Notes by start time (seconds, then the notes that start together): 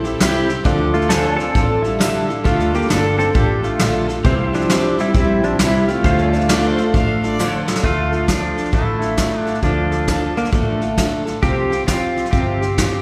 Already playing: A#1 G4 A4 C5 E5
0.04 C4 E4 G4, snare
0.19 C2 C3 G3 C4 E4 G4, snare, hi-hat pedal
0.49 C4 E4 G4, snare
0.64 D2 D3 F3 D4 F4 A4, kick, snare
0.94 A3 D4 F4 A4, snare
1.02 snare
1.09 D3 F3 D4 F4 A4 C5 G#5, snare, hi-hat pedal
1.31 A5
1.36 C4 A4 D5, snare
1.40 D4 F4
1.55 A1 F3 D4 F4 A4, kick, snare
1.82 G3 E4 F4 A4, snare
1.86 D4
1.99 D3 F3 D4 F4 A4, snare, hi-hat pedal
2.28 D4 F4 A4, snare
2.44 D2 D3 F3 A3 D4 F4 A4, kick, snare
2.60 snare
2.73 A#3 D4 F4 G4 A4, snare
2.82 snare
2.89 G1 D3 F3 D4 F4 A4, snare, hi-hat pedal
3.18 C4 D4 F4 A4, snare
3.33 A1 F3 D4 F4 G4 A4, kick, snare
3.63 A3 D4 F4 A4, snare
3.79 A#1 D3 F3 D4 F4 A4, snare, hi-hat pedal
4.08 D4 F4 A4, snare
4.24 C2 C3 E3 G3 C4 E4 G4 C5 F5, kick, snare
4.47 E5
4.53 F3 C4 D4 E4 G4, snare
4.62 snare
4.69 C3 G3 C4 E4 G4, snare, hi-hat pedal
4.98 G3 C4 E4 G4, snare
5.13 A#1 G3 C4 E4 G4, kick, snare
5.42 F3 C4 D4 E4 G4, snare
5.59 C2 C3 G3 C4 E4 G4, snare, hi-hat pedal
5.88 A3 C4 E4 F4 G4, snare
6.04 D2 D3 F3 D4 F4 G4 A4 C5 F5, kick, snare
6.19 snare
6.30 A4 D5, snare
6.35 D4 F4
6.41 snare
6.48 D3 F3 D4 F4 D5, snare, hi-hat pedal
6.52 A4
6.62 C5
6.78 D4 F4 A4, snare
6.92 A1 F3 D4 F4 F5, kick, snare
6.97 A4
7.23 D4 F4 A4 D5, snare
7.39 D3 F3 D4 F4 A4, snare, hi-hat pedal
7.68 D4 F4 A4, snare
7.76 snare
7.83 D2 D3 F3 A3 D4 F4 A4, kick, snare
8.12 D4 F4 A4, snare
8.26 F3 D4 F4 A4, kick, snare, hi-hat pedal
8.56 D4 F4 A4, snare
8.65 snare
8.72 A1 D3 F3 A3 D4 E4 F4 A4, kick, snare
9.01 D4 F4 A4, snare
9.17 F3 D4 F4 A4, kick, snare, hi-hat pedal
9.40 D4
9.45 D4 F4 A4, snare
9.55 snare
9.62 D2 D3 F3 D4 F4 A4, kick, snare
9.91 D4 F4 A4, snare
10.07 F3 D4 F4 A4, kick, snare, hi-hat pedal
10.35 D3 A#3 D4 F4 A4, snare
10.45 snare
10.51 A1 D3 F3 A3 D4 F4 A4, kick, snare
10.81 D4 F4 A4, snare
10.97 F3 D4 F4 A4, kick, snare, hi-hat pedal
11.25 D4 F4 A4, snare
11.42 C2 C3 F3 C4 F4 G4, kick, snare
11.70 C4 F4 G4, snare
11.86 F3 C4 F4 G4, kick, snare, hi-hat pedal
12.16 C4 F4 G4, snare
12.25 snare
12.32 G1 C3 F3 C4 F4 G4, kick, snare
12.61 C4 F4 G4, snare
12.78 F3 C4 F4 G4, kick, snare, hi-hat pedal